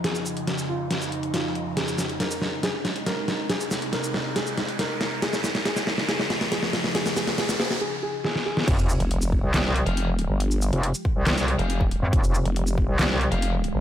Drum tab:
CC |----------------|----------------|----------------|----------------|
HH |x--xx---x-xxx-x-|x--xx---x-xxx-x-|x--xx---x-xxx-x-|x--xx---x-xxx-x-|
SH |-xx--x---x------|-xx--x----------|-xx--x---x------|-xx--x----------|
CP |----------------|----------------|----------------|----------------|
SD |o---o---o---o---|o-o-o-o-o-o-o-o-|o-o-o-o-o-o-o-o-|oooooooooooooooo|
BD |----------------|----------------|----------------|----------------|

CC |----------------|x---------------|----------------|----------------|
HH |x--xx-----------|x--xx---x-xxx-x-|x--xx---x-xxx-x-|x--xx---x-xxx-x-|
SH |-xx--x----------|-xx--x----------|-xx--x---x------|-xx--x----------|
CP |----------------|--------x-------|--------x-------|--------x-------|
SD |oooooooo----oo-o|--------o-------|--------o-------|--------o-------|
BD |----------------|o-----o---------|------o------o--|o-----o---------|